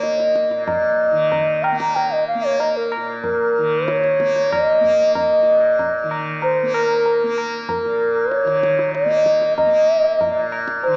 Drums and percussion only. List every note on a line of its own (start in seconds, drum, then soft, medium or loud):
0.03 tabla te medium
0.20 tabla te medium
0.35 tabla ke soft
0.51 tabla te medium
0.68 tabla tin medium
0.68 tabla ge medium
1.32 tabla tin medium
1.32 tabla ge medium
1.64 tabla na medium
1.80 tabla ke medium
1.96 tabla tin medium
2.60 tabla tin medium
2.92 tabla na medium
3.24 tabla tin medium
3.24 tabla ge medium
3.88 tabla te medium
4.04 tabla te medium
4.20 tabla ke medium
4.36 tabla te medium
4.52 tabla na medium
4.52 tabla ge medium
4.84 tabla ge soft
5.15 tabla tin medium
5.15 tabla ge medium
5.79 tabla tin medium
5.79 tabla ge medium
6.11 tabla na medium
6.42 tabla tin medium
6.74 tabla na medium
7.06 tabla tin medium
7.38 tabla na medium
7.69 tabla tin medium
7.69 tabla ge medium
8.31 tabla te medium
8.47 tabla te medium
8.63 tabla ke medium
8.79 tabla te medium
8.95 tabla te medium
9.11 tabla te medium
9.26 tabla ke soft
9.42 tabla te medium
9.58 tabla tin medium
9.58 tabla ge medium
10.21 tabla tin medium
10.21 tabla ge medium
10.52 tabla na medium
10.68 tabla ke medium
10.84 tabla tin medium